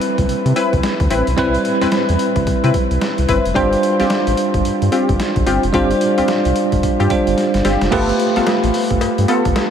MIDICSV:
0, 0, Header, 1, 5, 480
1, 0, Start_track
1, 0, Tempo, 545455
1, 1211, Time_signature, 4, 2, 24, 8
1, 8537, End_track
2, 0, Start_track
2, 0, Title_t, "Analog polysynth"
2, 0, Program_c, 0, 90
2, 491, Note_on_c, 0, 60, 75
2, 493, Note_on_c, 0, 64, 68
2, 496, Note_on_c, 0, 71, 89
2, 639, Note_off_c, 0, 60, 0
2, 640, Note_off_c, 0, 64, 0
2, 642, Note_off_c, 0, 71, 0
2, 971, Note_on_c, 0, 60, 74
2, 974, Note_on_c, 0, 64, 68
2, 977, Note_on_c, 0, 71, 74
2, 1119, Note_off_c, 0, 60, 0
2, 1121, Note_off_c, 0, 64, 0
2, 1122, Note_off_c, 0, 71, 0
2, 1210, Note_on_c, 0, 60, 100
2, 1213, Note_on_c, 0, 64, 83
2, 1215, Note_on_c, 0, 71, 111
2, 1359, Note_off_c, 0, 60, 0
2, 1360, Note_off_c, 0, 64, 0
2, 1361, Note_off_c, 0, 71, 0
2, 1597, Note_on_c, 0, 60, 78
2, 1599, Note_on_c, 0, 64, 70
2, 1602, Note_on_c, 0, 71, 86
2, 1692, Note_off_c, 0, 60, 0
2, 1693, Note_off_c, 0, 64, 0
2, 1695, Note_off_c, 0, 71, 0
2, 2319, Note_on_c, 0, 60, 76
2, 2321, Note_on_c, 0, 64, 72
2, 2325, Note_on_c, 0, 71, 83
2, 2413, Note_off_c, 0, 60, 0
2, 2414, Note_off_c, 0, 64, 0
2, 2416, Note_off_c, 0, 71, 0
2, 2889, Note_on_c, 0, 60, 71
2, 2892, Note_on_c, 0, 64, 71
2, 2894, Note_on_c, 0, 71, 82
2, 3038, Note_off_c, 0, 60, 0
2, 3039, Note_off_c, 0, 64, 0
2, 3041, Note_off_c, 0, 71, 0
2, 3127, Note_on_c, 0, 60, 99
2, 3130, Note_on_c, 0, 65, 83
2, 3132, Note_on_c, 0, 67, 104
2, 3277, Note_off_c, 0, 60, 0
2, 3278, Note_off_c, 0, 65, 0
2, 3280, Note_off_c, 0, 67, 0
2, 3517, Note_on_c, 0, 60, 74
2, 3519, Note_on_c, 0, 65, 74
2, 3522, Note_on_c, 0, 67, 87
2, 3612, Note_off_c, 0, 60, 0
2, 3613, Note_off_c, 0, 65, 0
2, 3615, Note_off_c, 0, 67, 0
2, 4329, Note_on_c, 0, 60, 82
2, 4332, Note_on_c, 0, 65, 69
2, 4333, Note_on_c, 0, 67, 83
2, 4478, Note_off_c, 0, 60, 0
2, 4480, Note_off_c, 0, 65, 0
2, 4480, Note_off_c, 0, 67, 0
2, 4807, Note_on_c, 0, 60, 76
2, 4811, Note_on_c, 0, 65, 70
2, 4813, Note_on_c, 0, 67, 81
2, 4957, Note_off_c, 0, 60, 0
2, 4959, Note_off_c, 0, 65, 0
2, 4960, Note_off_c, 0, 67, 0
2, 5047, Note_on_c, 0, 60, 91
2, 5051, Note_on_c, 0, 65, 84
2, 5052, Note_on_c, 0, 67, 103
2, 5197, Note_off_c, 0, 60, 0
2, 5199, Note_off_c, 0, 65, 0
2, 5200, Note_off_c, 0, 67, 0
2, 5436, Note_on_c, 0, 60, 76
2, 5438, Note_on_c, 0, 65, 68
2, 5441, Note_on_c, 0, 67, 86
2, 5532, Note_off_c, 0, 60, 0
2, 5533, Note_off_c, 0, 65, 0
2, 5534, Note_off_c, 0, 67, 0
2, 6156, Note_on_c, 0, 60, 72
2, 6159, Note_on_c, 0, 65, 72
2, 6162, Note_on_c, 0, 67, 85
2, 6252, Note_off_c, 0, 60, 0
2, 6253, Note_off_c, 0, 65, 0
2, 6255, Note_off_c, 0, 67, 0
2, 6728, Note_on_c, 0, 60, 77
2, 6730, Note_on_c, 0, 65, 66
2, 6733, Note_on_c, 0, 67, 82
2, 6878, Note_off_c, 0, 60, 0
2, 6879, Note_off_c, 0, 65, 0
2, 6880, Note_off_c, 0, 67, 0
2, 6968, Note_on_c, 0, 59, 94
2, 6970, Note_on_c, 0, 65, 90
2, 6973, Note_on_c, 0, 69, 103
2, 7118, Note_off_c, 0, 59, 0
2, 7119, Note_off_c, 0, 65, 0
2, 7120, Note_off_c, 0, 69, 0
2, 7358, Note_on_c, 0, 59, 79
2, 7361, Note_on_c, 0, 65, 71
2, 7363, Note_on_c, 0, 69, 84
2, 7453, Note_off_c, 0, 59, 0
2, 7454, Note_off_c, 0, 65, 0
2, 7455, Note_off_c, 0, 69, 0
2, 8169, Note_on_c, 0, 59, 84
2, 8171, Note_on_c, 0, 65, 72
2, 8174, Note_on_c, 0, 69, 89
2, 8318, Note_off_c, 0, 59, 0
2, 8319, Note_off_c, 0, 65, 0
2, 8321, Note_off_c, 0, 69, 0
2, 8537, End_track
3, 0, Start_track
3, 0, Title_t, "Tine electric piano"
3, 0, Program_c, 1, 4
3, 0, Control_c, 1, 64, 127
3, 0, Note_on_c, 1, 55, 67
3, 0, Note_on_c, 1, 60, 71
3, 0, Note_on_c, 1, 64, 65
3, 0, Note_on_c, 1, 71, 86
3, 1171, Note_off_c, 1, 55, 0
3, 1174, Note_off_c, 1, 60, 0
3, 1181, Note_off_c, 1, 71, 0
3, 1202, Note_on_c, 1, 55, 68
3, 1206, Note_off_c, 1, 64, 0
3, 1208, Note_on_c, 1, 60, 67
3, 1216, Note_on_c, 1, 64, 68
3, 1224, Note_on_c, 1, 71, 86
3, 3091, Note_off_c, 1, 55, 0
3, 3094, Note_off_c, 1, 60, 0
3, 3098, Note_off_c, 1, 64, 0
3, 3102, Note_off_c, 1, 71, 0
3, 3118, Note_on_c, 1, 55, 68
3, 3126, Note_on_c, 1, 62, 68
3, 3132, Note_on_c, 1, 65, 68
3, 3140, Note_on_c, 1, 72, 83
3, 3143, Control_c, 1, 64, 0
3, 3308, Control_c, 1, 64, 127
3, 5009, Note_off_c, 1, 55, 0
3, 5013, Note_off_c, 1, 62, 0
3, 5016, Note_off_c, 1, 65, 0
3, 5020, Note_off_c, 1, 72, 0
3, 5040, Note_on_c, 1, 55, 75
3, 5047, Note_on_c, 1, 62, 68
3, 5055, Note_on_c, 1, 65, 66
3, 5062, Note_on_c, 1, 72, 82
3, 6221, Note_off_c, 1, 55, 0
3, 6225, Note_off_c, 1, 62, 0
3, 6229, Note_off_c, 1, 65, 0
3, 6232, Note_off_c, 1, 72, 0
3, 6249, Note_on_c, 1, 55, 55
3, 6250, Note_on_c, 1, 62, 49
3, 6256, Note_on_c, 1, 65, 47
3, 6258, Note_on_c, 1, 72, 56
3, 6956, Note_off_c, 1, 65, 0
3, 6961, Note_on_c, 1, 57, 74
3, 6967, Note_on_c, 1, 65, 66
3, 6970, Note_off_c, 1, 55, 0
3, 6970, Note_off_c, 1, 62, 0
3, 6974, Note_off_c, 1, 72, 0
3, 6974, Note_on_c, 1, 67, 72
3, 6981, Control_c, 1, 64, 0
3, 6981, Note_on_c, 1, 71, 82
3, 7137, Control_c, 1, 64, 127
3, 8537, Note_off_c, 1, 57, 0
3, 8537, Note_off_c, 1, 65, 0
3, 8537, Note_off_c, 1, 67, 0
3, 8537, Note_off_c, 1, 71, 0
3, 8537, End_track
4, 0, Start_track
4, 0, Title_t, "Analog synth bass"
4, 0, Program_c, 2, 38
4, 162, Note_on_c, 2, 36, 95
4, 228, Note_off_c, 2, 36, 0
4, 254, Note_on_c, 2, 48, 47
4, 312, Note_off_c, 2, 48, 0
4, 400, Note_on_c, 2, 48, 107
4, 466, Note_off_c, 2, 48, 0
4, 645, Note_on_c, 2, 36, 99
4, 710, Note_off_c, 2, 36, 0
4, 882, Note_on_c, 2, 38, 93
4, 948, Note_off_c, 2, 38, 0
4, 974, Note_on_c, 2, 33, 97
4, 1079, Note_off_c, 2, 33, 0
4, 1123, Note_on_c, 2, 35, 85
4, 1188, Note_off_c, 2, 35, 0
4, 1214, Note_on_c, 2, 36, 104
4, 1386, Note_off_c, 2, 36, 0
4, 1603, Note_on_c, 2, 40, 44
4, 1639, Note_off_c, 2, 40, 0
4, 1842, Note_on_c, 2, 40, 97
4, 1908, Note_off_c, 2, 40, 0
4, 2077, Note_on_c, 2, 36, 95
4, 2145, Note_off_c, 2, 36, 0
4, 2176, Note_on_c, 2, 48, 48
4, 2233, Note_off_c, 2, 48, 0
4, 2323, Note_on_c, 2, 48, 111
4, 2388, Note_off_c, 2, 48, 0
4, 2559, Note_on_c, 2, 36, 92
4, 2626, Note_off_c, 2, 36, 0
4, 2804, Note_on_c, 2, 36, 100
4, 2869, Note_off_c, 2, 36, 0
4, 2894, Note_on_c, 2, 31, 100
4, 2999, Note_off_c, 2, 31, 0
4, 3042, Note_on_c, 2, 29, 89
4, 3107, Note_off_c, 2, 29, 0
4, 3133, Note_on_c, 2, 31, 109
4, 3306, Note_off_c, 2, 31, 0
4, 3521, Note_on_c, 2, 33, 50
4, 3557, Note_off_c, 2, 33, 0
4, 3760, Note_on_c, 2, 33, 78
4, 3827, Note_off_c, 2, 33, 0
4, 3998, Note_on_c, 2, 31, 83
4, 4065, Note_off_c, 2, 31, 0
4, 4095, Note_on_c, 2, 43, 48
4, 4153, Note_off_c, 2, 43, 0
4, 4242, Note_on_c, 2, 43, 93
4, 4308, Note_off_c, 2, 43, 0
4, 4481, Note_on_c, 2, 31, 98
4, 4547, Note_off_c, 2, 31, 0
4, 4718, Note_on_c, 2, 33, 96
4, 4785, Note_off_c, 2, 33, 0
4, 4814, Note_on_c, 2, 31, 85
4, 4919, Note_off_c, 2, 31, 0
4, 4961, Note_on_c, 2, 29, 88
4, 5027, Note_off_c, 2, 29, 0
4, 5052, Note_on_c, 2, 31, 108
4, 5225, Note_off_c, 2, 31, 0
4, 5441, Note_on_c, 2, 36, 50
4, 5478, Note_off_c, 2, 36, 0
4, 5681, Note_on_c, 2, 36, 83
4, 5747, Note_off_c, 2, 36, 0
4, 5917, Note_on_c, 2, 31, 91
4, 5985, Note_off_c, 2, 31, 0
4, 6015, Note_on_c, 2, 43, 44
4, 6073, Note_off_c, 2, 43, 0
4, 6161, Note_on_c, 2, 43, 102
4, 6227, Note_off_c, 2, 43, 0
4, 6400, Note_on_c, 2, 31, 97
4, 6467, Note_off_c, 2, 31, 0
4, 6638, Note_on_c, 2, 31, 91
4, 6705, Note_off_c, 2, 31, 0
4, 6733, Note_on_c, 2, 31, 85
4, 6839, Note_off_c, 2, 31, 0
4, 6877, Note_on_c, 2, 29, 87
4, 6945, Note_off_c, 2, 29, 0
4, 6972, Note_on_c, 2, 31, 106
4, 7145, Note_off_c, 2, 31, 0
4, 7360, Note_on_c, 2, 33, 46
4, 7397, Note_off_c, 2, 33, 0
4, 7600, Note_on_c, 2, 33, 101
4, 7667, Note_off_c, 2, 33, 0
4, 7839, Note_on_c, 2, 31, 102
4, 7906, Note_off_c, 2, 31, 0
4, 7932, Note_on_c, 2, 43, 48
4, 7991, Note_off_c, 2, 43, 0
4, 8081, Note_on_c, 2, 43, 93
4, 8147, Note_off_c, 2, 43, 0
4, 8323, Note_on_c, 2, 31, 98
4, 8388, Note_off_c, 2, 31, 0
4, 8537, End_track
5, 0, Start_track
5, 0, Title_t, "Drums"
5, 13, Note_on_c, 9, 42, 70
5, 101, Note_off_c, 9, 42, 0
5, 160, Note_on_c, 9, 36, 84
5, 160, Note_on_c, 9, 42, 53
5, 248, Note_off_c, 9, 36, 0
5, 248, Note_off_c, 9, 42, 0
5, 255, Note_on_c, 9, 42, 68
5, 343, Note_off_c, 9, 42, 0
5, 403, Note_on_c, 9, 42, 46
5, 491, Note_off_c, 9, 42, 0
5, 494, Note_on_c, 9, 42, 66
5, 582, Note_off_c, 9, 42, 0
5, 643, Note_on_c, 9, 36, 82
5, 643, Note_on_c, 9, 42, 45
5, 731, Note_off_c, 9, 36, 0
5, 731, Note_off_c, 9, 42, 0
5, 734, Note_on_c, 9, 38, 105
5, 734, Note_on_c, 9, 42, 54
5, 822, Note_off_c, 9, 38, 0
5, 822, Note_off_c, 9, 42, 0
5, 880, Note_on_c, 9, 36, 85
5, 880, Note_on_c, 9, 42, 44
5, 968, Note_off_c, 9, 36, 0
5, 968, Note_off_c, 9, 42, 0
5, 972, Note_on_c, 9, 42, 85
5, 1060, Note_off_c, 9, 42, 0
5, 1119, Note_on_c, 9, 42, 39
5, 1207, Note_off_c, 9, 42, 0
5, 1212, Note_on_c, 9, 36, 105
5, 1212, Note_on_c, 9, 42, 67
5, 1300, Note_off_c, 9, 36, 0
5, 1300, Note_off_c, 9, 42, 0
5, 1359, Note_on_c, 9, 42, 51
5, 1447, Note_off_c, 9, 42, 0
5, 1451, Note_on_c, 9, 42, 70
5, 1539, Note_off_c, 9, 42, 0
5, 1597, Note_on_c, 9, 38, 65
5, 1597, Note_on_c, 9, 42, 54
5, 1685, Note_off_c, 9, 38, 0
5, 1685, Note_off_c, 9, 42, 0
5, 1687, Note_on_c, 9, 42, 65
5, 1689, Note_on_c, 9, 38, 112
5, 1775, Note_off_c, 9, 42, 0
5, 1777, Note_off_c, 9, 38, 0
5, 1837, Note_on_c, 9, 42, 46
5, 1925, Note_off_c, 9, 42, 0
5, 1929, Note_on_c, 9, 42, 70
5, 2017, Note_off_c, 9, 42, 0
5, 2075, Note_on_c, 9, 42, 51
5, 2077, Note_on_c, 9, 36, 86
5, 2163, Note_off_c, 9, 42, 0
5, 2165, Note_off_c, 9, 36, 0
5, 2172, Note_on_c, 9, 42, 70
5, 2173, Note_on_c, 9, 36, 86
5, 2260, Note_off_c, 9, 42, 0
5, 2261, Note_off_c, 9, 36, 0
5, 2321, Note_on_c, 9, 42, 43
5, 2409, Note_off_c, 9, 42, 0
5, 2412, Note_on_c, 9, 42, 68
5, 2413, Note_on_c, 9, 36, 84
5, 2500, Note_off_c, 9, 42, 0
5, 2501, Note_off_c, 9, 36, 0
5, 2560, Note_on_c, 9, 42, 45
5, 2648, Note_off_c, 9, 42, 0
5, 2653, Note_on_c, 9, 38, 103
5, 2653, Note_on_c, 9, 42, 57
5, 2741, Note_off_c, 9, 38, 0
5, 2741, Note_off_c, 9, 42, 0
5, 2798, Note_on_c, 9, 42, 46
5, 2886, Note_off_c, 9, 42, 0
5, 2892, Note_on_c, 9, 42, 83
5, 2893, Note_on_c, 9, 36, 101
5, 2980, Note_off_c, 9, 42, 0
5, 2981, Note_off_c, 9, 36, 0
5, 3040, Note_on_c, 9, 42, 42
5, 3128, Note_off_c, 9, 42, 0
5, 3131, Note_on_c, 9, 36, 106
5, 3133, Note_on_c, 9, 42, 71
5, 3219, Note_off_c, 9, 36, 0
5, 3221, Note_off_c, 9, 42, 0
5, 3279, Note_on_c, 9, 42, 56
5, 3367, Note_off_c, 9, 42, 0
5, 3372, Note_on_c, 9, 42, 71
5, 3460, Note_off_c, 9, 42, 0
5, 3517, Note_on_c, 9, 38, 66
5, 3517, Note_on_c, 9, 42, 52
5, 3605, Note_off_c, 9, 38, 0
5, 3605, Note_off_c, 9, 42, 0
5, 3607, Note_on_c, 9, 42, 67
5, 3609, Note_on_c, 9, 38, 110
5, 3695, Note_off_c, 9, 42, 0
5, 3697, Note_off_c, 9, 38, 0
5, 3757, Note_on_c, 9, 42, 51
5, 3845, Note_off_c, 9, 42, 0
5, 3849, Note_on_c, 9, 42, 69
5, 3937, Note_off_c, 9, 42, 0
5, 3996, Note_on_c, 9, 36, 92
5, 3996, Note_on_c, 9, 42, 52
5, 4084, Note_off_c, 9, 36, 0
5, 4084, Note_off_c, 9, 42, 0
5, 4092, Note_on_c, 9, 42, 68
5, 4180, Note_off_c, 9, 42, 0
5, 4241, Note_on_c, 9, 42, 46
5, 4329, Note_off_c, 9, 42, 0
5, 4330, Note_on_c, 9, 42, 67
5, 4418, Note_off_c, 9, 42, 0
5, 4480, Note_on_c, 9, 36, 84
5, 4480, Note_on_c, 9, 42, 47
5, 4568, Note_off_c, 9, 36, 0
5, 4568, Note_off_c, 9, 42, 0
5, 4572, Note_on_c, 9, 42, 56
5, 4573, Note_on_c, 9, 38, 101
5, 4660, Note_off_c, 9, 42, 0
5, 4661, Note_off_c, 9, 38, 0
5, 4716, Note_on_c, 9, 42, 46
5, 4718, Note_on_c, 9, 36, 84
5, 4804, Note_off_c, 9, 42, 0
5, 4806, Note_off_c, 9, 36, 0
5, 4810, Note_on_c, 9, 42, 78
5, 4898, Note_off_c, 9, 42, 0
5, 4958, Note_on_c, 9, 42, 40
5, 5046, Note_off_c, 9, 42, 0
5, 5049, Note_on_c, 9, 42, 71
5, 5050, Note_on_c, 9, 36, 109
5, 5137, Note_off_c, 9, 42, 0
5, 5138, Note_off_c, 9, 36, 0
5, 5197, Note_on_c, 9, 42, 54
5, 5285, Note_off_c, 9, 42, 0
5, 5289, Note_on_c, 9, 42, 66
5, 5377, Note_off_c, 9, 42, 0
5, 5436, Note_on_c, 9, 42, 53
5, 5524, Note_off_c, 9, 42, 0
5, 5526, Note_on_c, 9, 42, 67
5, 5529, Note_on_c, 9, 38, 115
5, 5614, Note_off_c, 9, 42, 0
5, 5617, Note_off_c, 9, 38, 0
5, 5677, Note_on_c, 9, 42, 45
5, 5765, Note_off_c, 9, 42, 0
5, 5769, Note_on_c, 9, 42, 71
5, 5857, Note_off_c, 9, 42, 0
5, 5915, Note_on_c, 9, 42, 52
5, 5916, Note_on_c, 9, 36, 83
5, 6003, Note_off_c, 9, 42, 0
5, 6004, Note_off_c, 9, 36, 0
5, 6013, Note_on_c, 9, 36, 83
5, 6013, Note_on_c, 9, 42, 75
5, 6101, Note_off_c, 9, 36, 0
5, 6101, Note_off_c, 9, 42, 0
5, 6161, Note_on_c, 9, 42, 44
5, 6249, Note_off_c, 9, 42, 0
5, 6249, Note_on_c, 9, 42, 70
5, 6252, Note_on_c, 9, 36, 82
5, 6337, Note_off_c, 9, 42, 0
5, 6340, Note_off_c, 9, 36, 0
5, 6398, Note_on_c, 9, 42, 51
5, 6486, Note_off_c, 9, 42, 0
5, 6491, Note_on_c, 9, 38, 50
5, 6492, Note_on_c, 9, 42, 57
5, 6579, Note_off_c, 9, 38, 0
5, 6580, Note_off_c, 9, 42, 0
5, 6636, Note_on_c, 9, 42, 50
5, 6638, Note_on_c, 9, 38, 60
5, 6724, Note_off_c, 9, 42, 0
5, 6726, Note_off_c, 9, 38, 0
5, 6730, Note_on_c, 9, 42, 81
5, 6731, Note_on_c, 9, 38, 85
5, 6818, Note_off_c, 9, 42, 0
5, 6819, Note_off_c, 9, 38, 0
5, 6877, Note_on_c, 9, 38, 85
5, 6877, Note_on_c, 9, 42, 43
5, 6965, Note_off_c, 9, 38, 0
5, 6965, Note_off_c, 9, 42, 0
5, 6970, Note_on_c, 9, 36, 106
5, 6970, Note_on_c, 9, 42, 72
5, 6970, Note_on_c, 9, 49, 92
5, 6970, Note_on_c, 9, 56, 67
5, 7058, Note_off_c, 9, 36, 0
5, 7058, Note_off_c, 9, 42, 0
5, 7058, Note_off_c, 9, 49, 0
5, 7058, Note_off_c, 9, 56, 0
5, 7119, Note_on_c, 9, 42, 53
5, 7207, Note_off_c, 9, 42, 0
5, 7212, Note_on_c, 9, 42, 75
5, 7300, Note_off_c, 9, 42, 0
5, 7357, Note_on_c, 9, 38, 61
5, 7358, Note_on_c, 9, 42, 54
5, 7445, Note_off_c, 9, 38, 0
5, 7446, Note_off_c, 9, 42, 0
5, 7449, Note_on_c, 9, 42, 68
5, 7450, Note_on_c, 9, 56, 72
5, 7452, Note_on_c, 9, 38, 108
5, 7537, Note_off_c, 9, 42, 0
5, 7538, Note_off_c, 9, 56, 0
5, 7540, Note_off_c, 9, 38, 0
5, 7599, Note_on_c, 9, 42, 45
5, 7687, Note_off_c, 9, 42, 0
5, 7691, Note_on_c, 9, 46, 69
5, 7779, Note_off_c, 9, 46, 0
5, 7837, Note_on_c, 9, 36, 87
5, 7837, Note_on_c, 9, 42, 53
5, 7925, Note_off_c, 9, 36, 0
5, 7925, Note_off_c, 9, 42, 0
5, 7929, Note_on_c, 9, 56, 74
5, 7931, Note_on_c, 9, 42, 74
5, 8017, Note_off_c, 9, 56, 0
5, 8019, Note_off_c, 9, 42, 0
5, 8081, Note_on_c, 9, 42, 47
5, 8169, Note_off_c, 9, 42, 0
5, 8169, Note_on_c, 9, 42, 72
5, 8169, Note_on_c, 9, 56, 68
5, 8257, Note_off_c, 9, 42, 0
5, 8257, Note_off_c, 9, 56, 0
5, 8318, Note_on_c, 9, 42, 50
5, 8320, Note_on_c, 9, 36, 87
5, 8406, Note_off_c, 9, 42, 0
5, 8408, Note_off_c, 9, 36, 0
5, 8410, Note_on_c, 9, 56, 68
5, 8411, Note_on_c, 9, 38, 102
5, 8411, Note_on_c, 9, 42, 56
5, 8498, Note_off_c, 9, 56, 0
5, 8499, Note_off_c, 9, 38, 0
5, 8499, Note_off_c, 9, 42, 0
5, 8537, End_track
0, 0, End_of_file